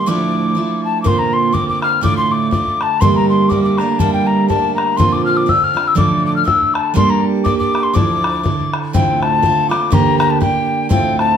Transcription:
0.06 steel-string acoustic guitar D2 A2 F3 A3 D4 E4, tin whistle D6
0.55 steel-string acoustic guitar F3 A3 D4 E4
0.84 tin whistle A5
1.02 steel-string acoustic guitar A#2 D3 A#3 C4 F4, tin whistle D6, bodhran
1.07 tin whistle C6
1.19 tin whistle A#5
1.33 tin whistle C6
1.53 steel-string acoustic guitar D3 A#3 C4 F4, tin whistle D6, bodhran
1.69 tin whistle D6, bodhran
1.82 tin whistle F6, bodhran
2.01 steel-string acoustic guitar A2 D3 A3 D4 F4, tin whistle D6, bodhran
2.17 tin whistle C6
2.32 tin whistle D6
2.51 steel-string acoustic guitar D3 A3 D4 F4, tin whistle D6, bodhran
2.67 bodhran
2.81 tin whistle A5, bodhran
3.01 steel-string acoustic guitar G2 D3 G3 A3 A#3 D4, tin whistle C6, bodhran
3.16 tin whistle A#5
3.29 tin whistle C6
3.49 steel-string acoustic guitar G3 A3 A#3 D4, tin whistle D6, bodhran
3.64 tin whistle D6, bodhran
3.78 steel-string acoustic guitar A3 A#3 D4, tin whistle A#5, bodhran
3.82 steel-string acoustic guitar G3
3.99 steel-string acoustic guitar G2 D3 G3 A3 A#3 D4, tin whistle A5, bodhran
4.13 tin whistle G5
4.27 tin whistle A#5
4.48 steel-string acoustic guitar G3 A3 A#3 D4, tin whistle A5, bodhran
4.75 tin whistle A#5, bodhran
4.97 steel-string acoustic guitar A#2 D3 F3 C4 D4 F4, tin whistle C6, bodhran
5.13 tin whistle D6
5.26 tin whistle F6
5.37 tin whistle D6
5.46 steel-string acoustic guitar D3 C4 D4 F4, tin whistle E6, bodhran
5.63 tin whistle F6, bodhran
5.74 steel-string acoustic guitar D3 C4 D4 F4, bodhran
5.88 tin whistle E6
5.95 steel-string acoustic guitar A2 D3 F3 A3 D4 A4, tin whistle D6, bodhran
6.26 tin whistle D6
6.36 tin whistle F6
6.44 steel-string acoustic guitar D3 A3 D4 A4, tin whistle E6, bodhran
6.62 bodhran
6.74 tin whistle A5, bodhran
6.94 steel-string acoustic guitar G3 A#3 D4 G4 A4, tin whistle C6, bodhran
7.10 tin whistle A#5
7.44 steel-string acoustic guitar A#3 D4 G4 A4, tin whistle D6, bodhran
7.59 tin whistle D6, bodhran
7.75 bodhran
7.83 tin whistle C6
7.94 steel-string acoustic guitar D2 D3 F3 D4 E4 A4, tin whistle D6, bodhran
8.24 bodhran
8.43 steel-string acoustic guitar D3 D4 E4 A4, bodhran
8.60 bodhran
8.73 bodhran
8.93 steel-string acoustic guitar D2 A2 D3 A3 C4 F4, tin whistle G5, bodhran
9.22 tin whistle A5, bodhran
9.43 steel-string acoustic guitar D3 A3 C4 F4, bodhran
9.69 steel-string acoustic guitar D3 A3 C4 F4, tin whistle D6, bodhran
9.90 steel-string acoustic guitar D2 D3 A#3 D4 G4, tin whistle A#5, bodhran
10.19 tin whistle A#5, bodhran
10.30 tin whistle A5
10.41 steel-string acoustic guitar D3 A#3 D4 G4, tin whistle G5, bodhran
10.89 steel-string acoustic guitar D2 A2 D3 A3 C4 F4, tin whistle G5, bodhran
11.19 tin whistle A5, bodhran

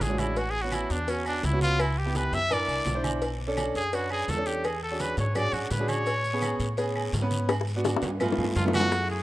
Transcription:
0.00 upright bass A1, trumpet G#4, cowbell, high conga, low timbale, short guiro, maracas
0.09 grand piano G#3 C#4 D4 F#4
0.18 trumpet E4, cowbell, high conga, low agogo, short guiro, claves, maracas
0.36 trumpet F#4, cowbell, high conga, low agogo, long guiro, maracas
0.50 trumpet G#4, high conga
0.62 grand piano B3 C#4 F#4, trumpet F#4
0.72 trumpet E4, cowbell, high conga, low timbale, low agogo, short guiro, claves, maracas
0.90 upright bass E2, trumpet D4, cowbell, high conga, short guiro, maracas
1.08 grand piano B3 C#4 F#4, trumpet C#4, cowbell, high conga, low agogo, long guiro, maracas
1.26 trumpet D4, high conga, low agogo, claves, maracas
1.43 upright bass C#2, trumpet E4, cowbell, high conga, low timbale, short guiro, maracas
1.53 grand piano B3 C#4 F#4
1.61 trumpet F4, cowbell, high conga, short guiro, maracas
1.79 trumpet E4, cowbell, high conga, low agogo, long guiro, claves, maracas
1.97 trumpet G4, high conga
2.06 grand piano B3 E4 G4
2.15 trumpet B4, cowbell, high conga, low timbale, low agogo, short guiro, maracas
2.32 upright bass F#2, trumpet E5, cowbell, high conga, short guiro, maracas
2.50 grand piano D4 E4 A#4, trumpet D5, cowbell, high conga, low conga, low agogo, long guiro, claves, maracas
2.68 upright bass C2, high conga, low agogo, maracas
2.86 upright bass B1, cowbell, high conga, low timbale, short guiro, maracas
2.95 grand piano D4 E4 C5
3.04 cowbell, high conga, low agogo, short guiro, claves, maracas
3.22 cowbell, low agogo, long guiro, maracas
3.40 high conga
3.47 grand piano C#4 D4 A4
3.57 cowbell, high conga, low timbale, low agogo, short guiro, claves, maracas
3.74 upright bass F#2, trumpet G#4, cowbell, high conga, short guiro, maracas
3.93 grand piano C#4 D4 B4, trumpet F#4, cowbell, high conga, low agogo, long guiro, maracas
4.10 trumpet G#4, high conga, low agogo, claves
4.28 upright bass E2, trumpet A4, cowbell, high conga, low timbale, short guiro, maracas
4.37 grand piano C#4 D4 A4
4.46 trumpet G4, cowbell, short guiro, maracas
4.64 trumpet G#4, cowbell, high conga, low agogo, long guiro, claves, maracas
4.83 trumpet A4, high conga
4.91 grand piano C#4 D4 F#4 G#4
4.99 trumpet B4, cowbell, high conga, low timbale, low agogo, short guiro, maracas
5.17 upright bass G#2, trumpet C#5, cowbell, high conga, short guiro, maracas
5.34 grand piano C#4 D4 F#4 G#4, trumpet D5, cowbell, high conga, low conga, low agogo, long guiro, claves, maracas
5.53 upright bass G#2, trumpet F#4, high conga, low conga, low agogo, maracas
5.71 upright bass A2, trumpet B4, cowbell, high conga, low timbale, short guiro, maracas
5.80 grand piano C#4 D4 F#4 G#4
5.88 trumpet C#5, cowbell, high conga, low agogo, short guiro, claves, maracas
6.06 cowbell, high conga, low agogo, long guiro, maracas
6.24 high conga, maracas
6.33 grand piano B3 C#4 G#4
6.42 cowbell, high conga, low timbale, low agogo, short guiro, claves, maracas
6.60 upright bass A2, cowbell, high conga, short guiro, maracas
6.77 grand piano B3 C#4 G#4, cowbell, high conga, low agogo, long guiro, maracas
6.96 high conga, low agogo, claves
7.13 upright bass G#2, cowbell, high conga, low timbale, short guiro, maracas
7.22 grand piano B3 C#4 B4
7.31 cowbell, high conga, short guiro, maracas
7.49 cowbell, high bongo, low agogo, long guiro, claves, maracas
7.61 high bongo
7.67 high conga, maracas
7.76 grand piano B3 D4 F#4
7.84 cowbell, high bongo, high conga, low timbale, low agogo, short guiro, maracas
7.96 high bongo
8.02 upright bass G2, cowbell, high conga, high timbale, short guiro, maracas
8.20 grand piano A3 B3 F4, cowbell, high conga, low conga, low agogo, long guiro, claves, maracas
8.32 low bongo
8.38 upright bass G2, grand piano F5, high conga, low conga, low timbale, low agogo
8.44 low bongo
8.56 upright bass F#2, trumpet F4, grand piano A5, cowbell, high conga, low timbale, short guiro, maracas
8.65 grand piano A3 B3 F4, low bongo
8.73 trumpet F#4, cowbell, high conga, low timbale, low agogo, short guiro, claves, maracas
8.80 low bongo
8.91 grand piano A3 E4 G#4, high bongo, long guiro, maracas
9.09 trumpet G#4, high conga, high timbale, maracas

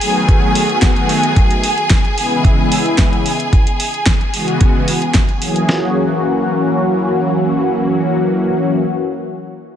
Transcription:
Already playing: violin section G#4 G#5
0.01 analog synth pad D#3 F#3 A3 B3 G#4, open hi-hat
0.28 kick, closed hi-hat
0.55 analog synth pad D#3 F#3 A3 B3 F#4, open hi-hat
0.69 analog synth pad D#3 F#3 A3 B3 F#4, closed hi-hat
0.82 kick, snare, closed hi-hat
0.96 analog synth pad D#3 F#3 A3 B3 F#4, closed hi-hat
1.09 open hi-hat
1.23 closed hi-hat
1.36 kick, closed hi-hat
1.51 closed hi-hat
1.63 open hi-hat
1.78 closed hi-hat
1.90 kick, snare, closed hi-hat
2.05 closed hi-hat
2.17 analog synth pad C#3 E3 G#3 B3 E4, open hi-hat
2.44 kick, closed hi-hat
2.72 open hi-hat
2.86 closed hi-hat
2.98 analog synth pad C#3 E3 G#3 B3 E4, kick, snare, closed hi-hat
3.13 closed hi-hat
3.26 open hi-hat
3.40 closed hi-hat
3.53 kick, closed hi-hat
3.67 closed hi-hat
3.80 open hi-hat
3.94 closed hi-hat
4.06 kick, snare, closed hi-hat
4.21 closed hi-hat
4.33 analog synth pad C#3 E3 G#3 B3 F#4, open hi-hat
4.48 closed hi-hat
4.61 kick, closed hi-hat
4.88 open hi-hat
5.02 closed hi-hat
5.14 kick, snare, closed hi-hat
5.29 closed hi-hat
5.41 analog synth pad E3 F#3 A#3 C#4 G#4, open hi-hat
5.56 closed hi-hat
5.67 analog synth pad E3 F#3 A#3 C#4 F#4, snare

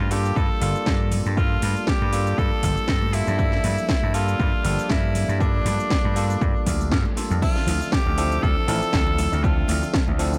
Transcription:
Already playing: tenor saxophone F4
0.00 slap bass G2
0.11 tine electric piano G3 A#3 D4 F4 A4, tenor saxophone G4, open hi-hat, shaker
0.25 shaker
0.36 slap bass G2, tenor saxophone A4, kick, shaker
0.61 slap bass G1, tine electric piano G3 A#3 D4 F4 A4, open hi-hat, shaker
0.75 shaker
0.86 slap bass G2, kick, snare, shaker
1.11 open hi-hat, low conga, shaker
1.26 slap bass G2, shaker
1.36 tine electric piano G3 A#3 D4 F4 A4, tenor saxophone F4, kick, shaker
1.62 slap bass G2, open hi-hat, high conga, shaker
1.76 shaker
1.87 tenor saxophone G4, kick, snare, shaker
2.01 slap bass G2, high conga
2.12 tine electric piano G3 A#3 D4 F4 A4, open hi-hat, shaker
2.27 shaker
2.38 slap bass G2, tenor saxophone A4, kick, shaker
2.63 slap bass G1, kick, open hi-hat, low conga, shaker
2.77 muted slap bass stroke, shaker
2.88 slap bass G2, kick, snare, shaker
3.02 high conga
3.13 tine electric piano G3 A#3 D4 F4 A4, tenor saxophone E4, open hi-hat, shaker
3.27 slap bass G2, low conga, shaker
3.38 tine electric piano F3 G3 A#3 D4 A4, kick, shaker
3.52 snare
3.63 slap bass G2, open hi-hat, high conga, low conga, shaker
3.78 shaker
3.89 kick, snare, shaker
4.02 slap bass G2, high conga
4.14 tine electric piano G3 A#3 D4 F4 A4, tenor saxophone F4, open hi-hat, shaker
4.28 shaker
4.40 slap bass G2, kick, shaker
4.64 slap bass G1, tine electric piano F3 G3 A#3 D4 A4, open hi-hat, shaker
4.79 shaker
4.90 slap bass G2, tenor saxophone E4, kick, snare, shaker
5.15 open hi-hat, low conga, shaker
5.29 slap bass G2, shaker
5.39 tine electric piano G3 A#3 D4 F4 A4, tenor saxophone D4, kick, shaker
5.65 slap bass G2, open hi-hat, high conga, low conga, shaker
5.80 shaker
5.90 kick, snare, shaker
6.04 slap bass G2, high conga
6.15 tine electric piano G3 A#3 D4 F4 A4, open hi-hat, shaker
6.30 shaker
6.41 slap bass G2, kick, shaker
6.66 slap bass D2, kick, open hi-hat, low conga, shaker
6.81 shaker
6.92 slap bass G2, kick, snare, shaker
7.05 high conga
7.16 tine electric piano G3 A#3 D4 F4 A4, open hi-hat, shaker
7.31 slap bass F2, low conga, shaker
7.41 synth arpeggio sound C3, tine electric piano F3 C4 D4 A4 E5, tenor saxophone F4, kick, crash, shaker
7.56 synth arpeggio sound D3, snare
7.67 slap bass D2, synth arpeggio sound E3, open hi-hat, high conga, low conga, shaker
7.81 synth arpeggio sound D3, shaker
7.92 synth arpeggio sound C3, tenor saxophone G4, kick, snare, shaker
8.06 slap bass D2, synth arpeggio sound D3, high conga
8.17 synth arpeggio sound E3, tine electric piano F3 C4 D4 E4 A4, open hi-hat, shaker
8.31 synth arpeggio sound D3, shaker
8.42 slap bass D2, synth arpeggio sound C3, tenor saxophone A4, kick, shaker
8.57 synth arpeggio sound D3
8.67 slap bass A1, synth arpeggio sound E3, tine electric piano F3 C4 D4 E4 A4, open hi-hat, shaker
8.82 synth arpeggio sound D3, shaker
8.93 slap bass D2, synth arpeggio sound C3, kick, snare, shaker
9.07 synth arpeggio sound D3, high conga
9.18 synth arpeggio sound E3, open hi-hat, low conga, shaker
9.32 slap bass D2, synth arpeggio sound D3, shaker
9.43 synth arpeggio sound C3, tine electric piano F3 C4 D4 A4 E5, tenor saxophone F4, kick, shaker
9.58 synth arpeggio sound D3
9.68 slap bass D2, synth arpeggio sound E3, open hi-hat, high conga, shaker
9.83 synth arpeggio sound D3, shaker
9.94 synth arpeggio sound C3, kick, snare, shaker
10.08 slap bass D2, synth arpeggio sound D3, high conga
10.18 synth arpeggio sound E3, tine electric piano F3 C4 D4 E4 A4, open hi-hat, shaker
10.33 synth arpeggio sound D3, shaker

